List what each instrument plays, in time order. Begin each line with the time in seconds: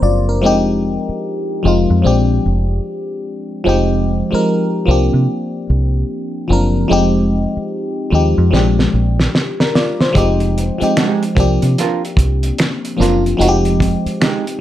Already playing: fm electric piano F3 A#3 C4 D4 G4 A#4 C5
0.02 fingered electric bass F#1, fm electric piano F4 D5
0.29 fm electric piano D4 A#4
0.42 fingered electric bass F1, fm electric piano F3 G#3 C4 D#4
0.46 fm electric piano G4
1.09 muted fingered electric bass stroke
1.63 fingered electric bass F1, fm electric piano F3 G#3 C4 D#4
1.67 fm electric piano F4
1.90 fingered electric bass F2
2.02 fingered electric bass A#1, fm electric piano F3 G#3 C4 D4
2.07 fm electric piano G4
2.46 fingered electric bass F1
3.64 fingered electric bass F1, fm electric piano F3 G#3 C4 D#4
3.69 fm electric piano G4
4.31 fm electric piano F3 G#3 C4 D#4 A#4, muted fingered electric bass stroke
4.86 fingered electric bass C2, fm electric piano F3 A#3 C4 D4
4.91 fm electric piano G4
5.14 fingered electric bass C3
5.70 fingered electric bass C2
6.48 fingered electric bass F#1, fm electric piano F3 A#3 C4 D4
6.53 fm electric piano A#4
6.88 fingered electric bass F1, fm electric piano F3 G#3 C4 D#4
6.93 fm electric piano G4
7.57 muted fingered electric bass stroke
8.10 fingered electric bass D#2, fm electric piano F3 G#3 C4 D#4
8.15 fm electric piano G4
8.38 fingered electric bass F2
8.51 fingered electric bass A#1, fm electric piano F3 G#3 C4 D4, snare
8.56 fm electric piano G4
8.79 snare
8.94 fingered electric bass A#1
9.20 snare
9.35 snare
9.60 fm electric piano D4 A#4, snare
9.75 fm electric piano F4 D5, snare
10.01 fm electric piano C5, snare
10.13 fingered electric bass F1, fm electric piano F3 G#3 C4 D#4, kick, closed hi-hat
10.18 fm electric piano G4
10.40 closed hi-hat
10.58 closed hi-hat
10.78 fm electric piano F3 G#3 C4 D#4, muted fingered electric bass stroke, closed hi-hat
10.83 fm electric piano G4
10.97 hollow-body jazz guitar G#3 D#4 G4, finger snap, snare, closed hi-hat
11.23 closed hi-hat
11.35 fingered electric bass C2, fm electric piano F3 A#3 C4 D4, kick, closed hi-hat
11.40 fm electric piano G4
11.62 fingered electric bass C3, closed hi-hat
11.78 hollow-body jazz guitar D4 F4 A#4, snare, closed hi-hat
12.05 closed hi-hat
12.17 fingered electric bass C2, kick, closed hi-hat
12.43 closed hi-hat
12.58 finger snap, muted hollow-body jazz guitar stroke, snare, closed hi-hat
12.85 closed hi-hat
12.97 fingered electric bass F#1, fm electric piano F3 A#3 C4 D4, hollow-body jazz guitar D4, snare
13.01 hollow-body jazz guitar F4 A#4, fm electric piano F4, closed hi-hat
13.26 closed hi-hat
13.37 fingered electric bass F1, fm electric piano F3 G#3 C4 D#4
13.41 fm electric piano F#4, closed hi-hat
13.48 fm electric piano G4
13.65 closed hi-hat
13.80 kick, closed hi-hat
14.06 muted fingered electric bass stroke, closed hi-hat
14.21 hollow-body jazz guitar G#3 D#4 G4, finger snap, snare, closed hi-hat
14.47 closed hi-hat